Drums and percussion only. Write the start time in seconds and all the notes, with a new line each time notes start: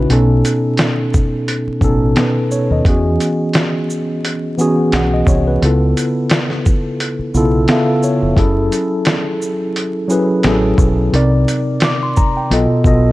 0.10 closed hi-hat
0.45 closed hi-hat, shaker
0.77 snare, closed hi-hat
1.14 kick, shaker
1.48 closed hi-hat
1.81 kick, shaker
2.16 snare, closed hi-hat
2.51 shaker
2.85 kick, closed hi-hat
3.20 closed hi-hat, shaker
3.53 snare, closed hi-hat
3.90 shaker
4.25 closed hi-hat
4.59 shaker
4.92 snare, closed hi-hat
5.27 kick, shaker
5.62 closed hi-hat
5.97 closed hi-hat, shaker
6.30 snare, closed hi-hat
6.50 snare
6.66 kick, shaker
7.00 closed hi-hat
7.34 shaker
7.68 snare, closed hi-hat
8.03 shaker
8.37 kick, closed hi-hat
8.72 closed hi-hat, shaker
9.05 snare, closed hi-hat
9.42 shaker
9.76 closed hi-hat
10.10 shaker
10.43 snare, closed hi-hat
10.78 kick, shaker
11.14 closed hi-hat
11.48 closed hi-hat, shaker
11.80 snare, closed hi-hat
12.17 kick, shaker
12.51 closed hi-hat
12.84 kick, shaker